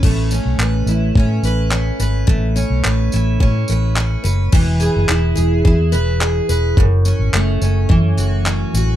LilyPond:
<<
  \new Staff \with { instrumentName = "Steel-string acoustic guitar" } { \time 4/4 \key a \lydian \tempo 4 = 107 a8 cis'8 b'8 e'8 cis'8 b'8 cis'8 b'8 | a8 cis'8 b'8 e'8 cis'8 b'8 cis'8 b'8 | e8 gis'8 e'8 gis'8 e'8 b'8 gis'8 b'8 | fis,8 cis'8 a8 cis'8 e8 fis'8 cis'8 fis'8 | }
  \new Staff \with { instrumentName = "Fingered electric bass" } { \clef bass \time 4/4 \key a \lydian a,,8. b,,16 a,,8 a,,8 a,8 a,,4 gis,,8 | a,,8. b,,16 a,,8 a,,8 a,8 a,,4 fis,,8 | e,,8. fis,,16 e,,8 e,,8 e,8 e,,4 e,,8 | fis,,8. gis,,16 fis,,8 fis,,8 fis,8 fis,,4 a,,8 | }
  \new DrumStaff \with { instrumentName = "Drums" } \drummode { \time 4/4 <cymc bd>8 tamb8 hc8 tamb8 bd8 tamb8 hc8 tamb8 | bd8 tamb8 hc8 tamb8 bd8 tamb8 hc8 tamb8 | <cymc bd>8 tamb8 hc8 tamb8 bd8 tamb8 hc8 tamb8 | bd8 tamb8 hc8 tamb8 bd8 tamb8 hc8 tamb8 | }
>>